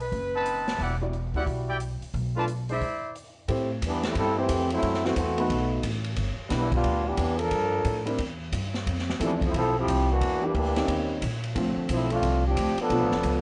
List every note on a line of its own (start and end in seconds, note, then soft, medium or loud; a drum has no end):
0.00 0.64 B4 medium
0.00 open hi-hat soft
0.12 0.76 F#1 medium
0.12 kick soft
0.12 open hi-hat soft
0.34 0.77 C4 medium
0.34 0.77 D#4 medium
0.34 0.77 B4 medium
0.34 0.77 A5 loud
0.46 closed hi-hat soft
0.68 snare soft
0.68 open hi-hat soft
0.79 1.30 E1 medium
0.79 0.94 E4 medium
0.79 0.94 G4 medium
0.79 0.94 D5 medium
0.79 0.94 F#5 medium
0.79 kick soft
0.79 open hi-hat soft
1.01 1.12 G3 medium
1.01 1.12 E4 soft
1.01 1.13 F#4 soft
1.01 1.13 D5 medium
1.13 closed hi-hat soft
1.34 1.45 D2 medium
1.34 1.79 G3 medium
1.34 1.78 E4 soft
1.34 1.43 E4 medium
1.34 1.79 F#4 medium
1.34 1.43 G4 medium
1.34 1.43 D5 medium
1.34 1.79 D5 medium
1.34 1.43 F#5 medium
1.34 open hi-hat soft
1.46 1.97 B1 medium
1.46 kick soft
1.46 open hi-hat soft
1.68 1.76 E4 medium
1.68 1.76 G4 medium
1.68 1.76 D5 medium
1.68 1.76 G5 medium
1.80 closed hi-hat soft
2.01 muted upright bass stroke soft
2.01 open hi-hat soft
2.14 2.78 B1 medium
2.14 kick soft
2.14 open hi-hat soft
2.36 2.47 A3 soft
2.36 2.47 D4 soft
2.36 2.44 F4 medium
2.36 2.48 F4 medium
2.36 2.44 B4 medium
2.36 2.48 B4 medium
2.36 2.44 D5 medium
2.36 2.44 A5 medium
2.48 closed hi-hat soft
2.69 2.80 G#3 soft
2.69 2.80 D4 soft
2.69 3.13 E4 medium
2.69 2.80 E4 soft
2.69 3.12 C5 medium
2.69 2.81 C5 medium
2.69 3.13 D5 medium
2.69 3.13 E5 medium
2.69 open hi-hat soft
2.81 kick soft
2.81 open hi-hat soft
3.15 closed hi-hat soft
3.48 3.81 A2 medium
3.48 3.67 A3 medium
3.48 3.67 C4 soft
3.48 3.68 E4 soft
3.48 3.68 G4 soft
3.48 3.68 C5 medium
3.48 kick soft
3.48 ride medium
3.82 4.14 E2 medium
3.82 4.04 G3 medium
3.82 4.04 B3 medium
3.82 4.04 D4 medium
3.82 kick soft
3.82 hi-hat pedal soft
3.82 ride medium
3.86 4.04 E3 medium
4.03 4.15 G3 medium
4.03 4.17 A3 medium
4.03 4.16 C4 medium
4.03 4.17 E4 medium
4.03 snare medium
4.03 ride soft
4.15 4.48 G2 medium
4.15 4.36 G3 medium
4.15 4.36 C4 medium
4.15 4.36 E4 medium
4.15 4.36 A4 loud
4.15 kick soft
4.15 ride medium
4.38 4.71 E3 medium
4.38 4.48 A3 medium
4.38 4.71 A3 medium
4.38 4.48 C4 medium
4.38 4.71 C4 medium
4.38 4.48 E4 medium
4.38 4.71 G4 medium
4.38 4.49 G4 soft
4.38 4.49 C5 medium
4.49 4.82 F2 medium
4.49 kick soft
4.49 hi-hat pedal medium
4.49 ride medium
4.70 5.02 F#3 medium
4.70 5.03 A3 medium
4.70 5.03 C4 medium
4.70 5.02 E4 medium
4.70 ride soft
4.82 5.15 F#2 medium
4.82 kick soft
4.82 ride medium
4.94 snare soft
5.04 5.15 E3 medium
5.04 5.15 A3 medium
5.04 5.15 C4 medium
5.04 5.16 E4 medium
5.04 5.15 F#4 medium
5.04 5.16 F#4 medium
5.04 5.16 C5 medium
5.04 snare soft
5.16 5.49 E2 medium
5.16 5.47 E3 medium
5.16 5.80 A3 medium
5.16 5.48 C4 medium
5.16 5.79 F#4 medium
5.16 kick soft
5.16 hi-hat pedal medium
5.16 ride medium
5.38 5.81 A3 medium
5.38 5.82 B3 medium
5.38 5.82 D#4 medium
5.38 5.82 F#4 medium
5.38 5.82 B4 medium
5.38 ride soft
5.49 5.82 B1 medium
5.49 kick soft
5.49 ride medium
5.83 6.16 A1 medium
5.83 kick soft
5.83 hi-hat pedal medium
5.83 ride medium
6.04 ride soft
6.16 6.37 G1 medium
6.16 kick soft
6.16 ride medium
6.38 muted upright bass stroke soft
6.49 6.83 B1 medium
6.49 6.69 G3 medium
6.49 6.70 B3 medium
6.49 6.70 D4 medium
6.49 6.70 E4 medium
6.49 6.70 B4 medium
6.49 kick soft
6.49 snare soft
6.49 hi-hat pedal medium
6.49 ride medium
6.54 6.72 G3 medium
6.54 6.72 B3 medium
6.54 6.72 D4 medium
6.54 6.72 E4 medium
6.72 7.04 G3 medium
6.72 7.04 B3 medium
6.72 7.03 D4 medium
6.72 7.04 F4 loud
6.72 kick medium
6.72 ride soft
6.84 7.17 D2 medium
6.84 kick soft
6.84 ride medium
7.05 7.39 E3 medium
7.05 7.39 B3 medium
7.05 7.37 D4 medium
7.05 7.39 G4 medium
7.17 7.50 E2 medium
7.17 kick soft
7.17 hi-hat pedal medium
7.17 ride medium
7.38 8.06 F3 medium
7.38 8.06 D4 medium
7.38 8.06 A4 medium
7.38 8.06 A#4 loud
7.38 ride soft
7.51 7.84 G2 medium
7.51 kick soft
7.51 ride medium
7.85 8.18 A2 medium
7.85 kick soft
7.85 hi-hat pedal medium
7.85 ride medium
8.06 8.17 G3 medium
8.06 8.18 C4 soft
8.06 8.18 D4 medium
8.06 8.18 E4 soft
8.06 8.18 A#4 medium
8.06 ride soft
8.19 8.51 E2 medium
8.19 kick soft
8.19 ride medium
8.52 8.85 G2 medium
8.52 kick soft
8.52 hi-hat pedal medium
8.52 ride medium
8.74 snare soft
8.86 9.19 F2 medium
8.86 kick soft
8.86 ride medium
8.99 snare soft
9.10 snare soft
9.20 9.52 E2 medium
9.20 9.37 E3 medium
9.20 9.39 F3 medium
9.20 9.36 G3 medium
9.20 9.39 A3 medium
9.20 9.40 C4 medium
9.20 9.34 D4 medium
9.20 9.40 E4 medium
9.20 9.40 A4 medium
9.20 kick soft
9.20 hi-hat pedal medium
9.20 ride medium
9.24 9.37 B3 medium
9.36 9.41 D4 medium
9.41 9.54 F3 medium
9.41 9.55 A3 medium
9.41 9.54 C4 medium
9.41 9.54 E4 medium
9.41 kick soft
9.41 ride soft
9.54 9.87 B1 medium
9.54 9.75 F3 medium
9.54 9.75 C4 medium
9.54 9.74 E4 medium
9.54 9.74 A4 loud
9.54 kick soft
9.54 ride medium
9.77 10.08 F3 medium
9.77 10.07 C4 medium
9.77 10.07 E4 medium
9.77 10.08 G4 loud
9.87 10.20 C2 medium
9.87 kick soft
9.87 hi-hat pedal medium
9.87 ride medium
10.10 10.43 E3 medium
10.10 10.43 A#3 medium
10.10 10.43 D4 medium
10.10 10.43 F#4 medium
10.20 10.53 E2 medium
10.20 kick soft
10.20 ride medium
10.41 10.53 E3 medium
10.41 10.53 G3 medium
10.41 10.53 A#3 medium
10.41 10.54 D4 medium
10.41 10.53 D4 medium
10.41 10.54 G4 medium
10.41 10.53 G4 medium
10.54 10.87 D2 medium
10.54 10.86 E3 medium
10.54 11.18 A#3 medium
10.54 10.86 D4 medium
10.54 11.18 G4 medium
10.54 kick soft
10.54 hi-hat pedal medium
10.54 ride medium
10.76 11.20 D#3 medium
10.76 11.20 G3 medium
10.76 11.20 C4 medium
10.76 11.21 C#4 medium
10.76 11.21 D#4 medium
10.76 snare soft
10.76 ride soft
10.87 11.21 D#2 medium
10.87 kick soft
10.87 ride medium
11.22 11.55 A#1 medium
11.22 kick soft
11.22 hi-hat pedal medium
11.22 ride medium
11.44 ride soft
11.55 11.76 D2 medium
11.55 12.49 D3 medium
11.55 12.49 F3 medium
11.55 12.50 A3 medium
11.55 12.50 C4 medium
11.55 12.50 F4 medium
11.55 kick soft
11.55 ride medium
11.76 muted upright bass stroke soft
11.89 12.21 B1 medium
11.89 12.10 F3 medium
11.89 12.10 A3 medium
11.89 12.10 C4 medium
11.89 12.10 E4 medium
11.89 kick soft
11.89 hi-hat pedal soft
11.89 ride medium
12.10 12.43 A3 medium
12.10 12.42 C4 medium
12.10 12.43 D4 medium
12.10 12.42 F4 loud
12.10 ride soft
12.22 12.55 C2 medium
12.22 kick soft
12.22 ride medium
12.46 12.79 F3 medium
12.46 12.79 C4 medium
12.46 12.79 D4 medium
12.46 12.79 G4 medium
12.56 12.76 D2 loud
12.56 kick soft
12.56 hi-hat pedal medium
12.56 ride medium
12.77 13.41 D4 medium
12.77 muted upright bass stroke soft
12.77 ride soft
12.81 13.41 F3 medium
12.81 13.41 B3 medium
12.81 13.41 A4 loud
12.89 13.01 B1 medium
12.89 13.41 D3 medium
12.89 13.41 F3 medium
12.89 13.41 A3 medium
12.89 13.41 B3 medium
12.89 13.41 F4 medium
12.89 kick soft
12.89 ride medium
13.01 13.11 A1 medium
13.12 13.23 F1 medium
13.12 snare soft
13.23 13.41 C#2 medium
13.23 kick soft
13.23 hi-hat pedal medium
13.23 ride medium